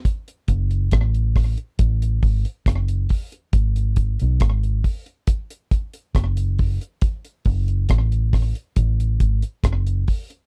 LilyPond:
<<
  \new Staff \with { instrumentName = "Fingered electric bass" } { \clef bass \time 4/4 \key fis \minor \tempo 4 = 69 r8 fis,,8 a,,8. r16 a,,8 gis,,16 r16 fis,,8 r8 | gis,,8. b,,16 gis,,8 r4. fis,,8. r16 | r8 fis,,8 a,,8. r16 a,,8 gis,,16 r16 fis,,8 r8 | }
  \new DrumStaff \with { instrumentName = "Drums" } \drummode { \time 4/4 <hh bd>16 hh16 <hh bd>16 hh16 <hh bd ss>16 hh16 <hho bd ss>16 hh16 <hh bd>16 hh16 <hho bd>16 hh16 <hh bd ss>16 hh16 <hho bd>16 hh16 | <hh bd>16 hh16 <hh bd>16 hh16 <hh bd ss>16 hh16 <hho bd>16 hh16 <hh bd>16 hh16 <hh bd>16 hh16 <hh bd ss>16 hh16 <hho bd>16 hh16 | <hh bd>16 hh16 <hho bd>16 hh16 <hh bd ss>16 hh16 <hho bd ss>16 hh16 <hh bd>16 hh16 <hh bd>16 hh16 <hh bd ss>16 hh16 <hho bd>16 hh16 | }
>>